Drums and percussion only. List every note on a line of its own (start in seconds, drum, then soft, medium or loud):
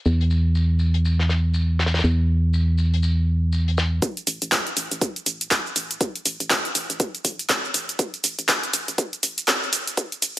0.06 shaker medium
0.21 closed hi-hat soft
0.30 shaker medium
0.55 shaker medium
0.79 shaker medium
0.94 closed hi-hat soft
1.05 shaker medium
1.19 snare medium
1.29 snare medium
1.29 shaker medium
1.54 shaker medium
1.79 snare medium
1.79 shaker medium
1.86 snare medium
1.86 shaker medium
1.94 snare medium
1.94 shaker medium
1.99 snare medium
1.99 shaker medium
2.04 shaker medium
2.53 shaker medium
2.78 shaker medium
2.94 closed hi-hat soft
3.03 shaker medium
3.52 shaker medium
3.68 closed hi-hat soft
3.77 snare loud
3.77 shaker medium
4.02 kick loud
4.02 closed hi-hat medium
4.02 shaker soft
4.17 closed hi-hat soft
4.17 shaker soft
4.27 open hi-hat loud
4.27 shaker medium
4.42 closed hi-hat medium
4.42 shaker soft
4.52 kick loud
4.52 clap loud
4.52 closed hi-hat medium
4.52 shaker soft
4.67 closed hi-hat soft
4.67 shaker soft
4.77 open hi-hat loud
4.77 shaker medium
4.91 closed hi-hat medium
4.91 shaker soft
5.01 kick loud
5.01 closed hi-hat medium
5.01 shaker soft
5.16 closed hi-hat soft
5.16 shaker soft
5.26 open hi-hat loud
5.26 shaker medium
5.41 closed hi-hat medium
5.41 shaker soft
5.51 kick loud
5.51 clap loud
5.51 closed hi-hat medium
5.51 shaker soft
5.66 shaker soft
5.76 open hi-hat loud
5.76 shaker medium
5.91 closed hi-hat medium
5.91 shaker soft
6.01 kick loud
6.01 closed hi-hat medium
6.01 shaker soft
6.16 closed hi-hat soft
6.16 shaker soft
6.26 open hi-hat loud
6.26 shaker medium
6.40 closed hi-hat medium
6.40 shaker soft
6.50 kick loud
6.50 clap loud
6.50 closed hi-hat medium
6.50 shaker soft
6.65 closed hi-hat soft
6.65 shaker soft
6.75 open hi-hat loud
6.75 shaker medium
6.90 closed hi-hat medium
6.90 shaker soft
7.00 kick loud
7.00 closed hi-hat medium
7.00 shaker soft
7.15 closed hi-hat soft
7.15 shaker soft
7.25 kick medium
7.25 open hi-hat loud
7.25 shaker medium
7.39 closed hi-hat medium
7.39 shaker soft
7.49 kick loud
7.49 clap loud
7.49 closed hi-hat medium
7.49 shaker soft
7.65 shaker soft
7.74 open hi-hat loud
7.74 shaker medium
7.89 closed hi-hat medium
7.89 shaker soft
7.99 kick loud
7.99 closed hi-hat medium
7.99 shaker soft
8.14 closed hi-hat soft
8.14 shaker soft
8.24 open hi-hat loud
8.24 shaker medium
8.39 closed hi-hat medium
8.39 shaker soft
8.49 kick loud
8.49 clap loud
8.49 closed hi-hat medium
8.49 shaker soft
8.63 closed hi-hat soft
8.63 shaker soft
8.73 open hi-hat loud
8.73 shaker medium
8.88 closed hi-hat soft
8.88 shaker soft
8.98 kick loud
8.98 closed hi-hat medium
8.98 shaker soft
9.13 closed hi-hat soft
9.13 shaker soft
9.23 open hi-hat loud
9.23 shaker medium
9.38 closed hi-hat medium
9.38 shaker soft
9.48 kick loud
9.48 clap loud
9.48 closed hi-hat medium
9.48 shaker soft
9.63 shaker soft
9.73 open hi-hat loud
9.73 shaker medium
9.87 closed hi-hat soft
9.87 shaker soft
9.97 kick loud
9.97 closed hi-hat medium
9.97 shaker soft
10.12 closed hi-hat soft
10.12 shaker soft
10.22 open hi-hat loud
10.22 shaker medium